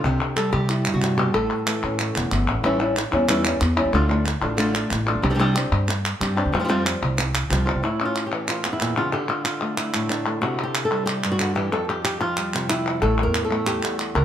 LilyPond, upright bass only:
\new Staff \with { instrumentName = "Upright bass" } { \clef bass \time 4/4 \tempo 4 = 185 c,8 r4 c4~ c16 c4~ c16 | a,,8 r4 a,4 e,,8 g,,8 a,,8 | a,,4. e,4. e,8. e,16 | d,4. a,,4. a,,8. g,16 |
c,4. g,4. g,8. d,16 | f,4. c,4. c,8. c,16 | r1 | r1 |
r1 | r1 | a,,8. e,2 r8. cis,8 | }